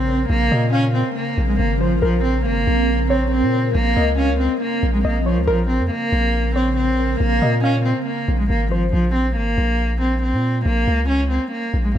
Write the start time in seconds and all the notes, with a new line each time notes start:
Already playing: A#1 C#3 C4 A#4
0.30 A#1 A#3
0.51 A#2 D#5
0.73 C#4 F5
0.94 C4
1.16 A#3
1.38 A#1
1.48 G#3
1.59 G#1 A#3
1.81 F3 C5
2.02 A#1 F3 A#4
2.24 C4
2.46 G#1 A#3
2.67 A#1
3.10 C4 C#5
3.32 C4
3.43 A#2
3.75 A#1 A#3
3.97 C#2 D#5
4.18 C#4 F5
4.40 C4
4.61 A#3
4.83 A#1
4.93 G#3
5.04 A#1 A#3 D#5
5.26 F3 C#5
5.37 C#2
5.47 A#1 C#3 F3 C4 A#4
5.69 C4
5.80 F2
5.91 A#3
6.12 A#1
6.56 C4 C#5
6.77 C4
7.20 A#1 A#3
7.42 A#2 D#5
7.64 C#4 F5
7.85 C4
8.07 A#3
8.28 A#1
8.39 G#3
8.50 G#1 A#3
8.71 F3 C5
8.93 A#1 F3
9.15 C4
9.36 G#1 A#3
9.58 A#1
10.01 C4
10.23 C4
10.33 A#2
10.66 A#1 A#3
10.87 C#2
11.09 C#4
11.31 C4
11.52 A#3
11.74 A#1
11.84 G#3
11.95 A#3